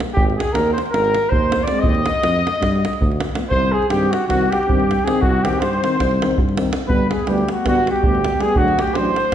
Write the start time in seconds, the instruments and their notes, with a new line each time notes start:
0.00 davul high
0.10 flugelhorn G4, davul high
0.14 tuba G#1, trumpet G4, davul low
0.30 davul high
0.36 trumpet G#4, flugelhorn G#4, davul high
0.47 davul high
0.53 tuba D#2, trumpet A#4, flugelhorn A#4, davul high
0.68 davul high
0.73 trumpet C5, flugelhorn C5
0.78 davul high
0.86 davul high
0.90 tuba G#1, trumpet A#4, flugelhorn A#4
0.94 davul high
1.05 davul high
1.15 davul high
1.29 tuba D#2, flugelhorn C5, trumpet C5, davul low
1.52 davul high
1.63 flugelhorn D5, trumpet D5
1.68 euphonium G#3 C4, davul high
1.75 flugelhorn D#5, davul high
1.82 tuba D#2, trumpet D#5, davul low
1.95 davul high
2.06 davul high
2.15 davul high
2.23 tuba F2, davul high
2.36 davul high
2.47 davul high
2.55 davul high
2.61 tuba G2, davul high, davul low
2.76 davul high
2.85 davul high
2.93 davul high
3.00 tuba D2, davul low
3.12 davul high
3.20 davul high
3.29 davul high
3.35 euphonium F3 B3, davul high
3.43 davul high
3.49 tuba C2, euphonium D#3, flugelhorn C5, trumpet C5, davul low
3.54 euphonium C4
3.72 flugelhorn G#4, trumpet G#4
3.82 davul high
3.89 tuba G2, euphonium D#3 C4, flugelhorn G4, trumpet G4, davul high
4.03 davul high
4.10 trumpet F#4, flugelhorn F#4, davul high
4.27 tuba C2, euphonium D#3 C4, trumpet F#4, flugelhorn F#4, davul high, davul low
4.41 davul high
4.50 trumpet G4, flugelhorn G4, davul high
4.63 davul high
4.68 tuba G2, euphonium D#3 C4, davul low
4.80 davul high
4.91 davul high
4.99 davul high
5.04 euphonium D#3 C4, flugelhorn G#4, trumpet G#4, davul high
5.15 davul high
5.21 tuba C2, trumpet F#4, flugelhorn F#4, davul low
5.43 euphonium D#3 C4, flugelhorn G4, trumpet G4, davul high
5.53 davul high
5.60 tuba G2, flugelhorn C5, trumpet C5, davul high
5.73 davul high
5.82 euphonium D#3 C4, davul high
5.99 tuba C2, davul high, davul low
6.11 davul high
6.21 euphonium D#3 C4, davul high
6.31 davul high
6.38 tuba G2, davul low
6.49 davul high
6.57 euphonium D#3 C4, davul high
6.66 davul high
6.73 davul high
6.81 davul high
6.88 tuba G1, euphonium G3 B3, flugelhorn B4, trumpet B4, davul low
7.10 trumpet G#4, flugelhorn G#4, davul high
7.19 davul high
7.27 tuba D2, euphonium G3 B3, flugelhorn G4, trumpet G4, davul high
7.38 davul high
7.49 flugelhorn F#4, trumpet F#4, davul high
7.65 tuba G1, euphonium G3 B3, flugelhorn F#4, trumpet F#4, davul high, davul low
7.75 davul high
7.87 flugelhorn G4, davul high
7.92 trumpet G4
7.96 davul high
8.03 tuba D2, euphonium G3 B3, davul low
8.15 davul high
8.25 davul high
8.32 davul high
8.39 euphonium G3 B3, flugelhorn G#4, davul high
8.43 trumpet G#4
8.48 davul high
8.55 tuba D2, euphonium F#3 D4, trumpet F#4, flugelhorn F#4, davul low
8.68 davul high
8.79 trumpet G4, flugelhorn G4, davul high
8.88 davul high
8.94 tuba A1, euphonium F#3 D4, flugelhorn C5, trumpet C5, davul high
9.05 davul high
9.16 davul high
9.25 davul high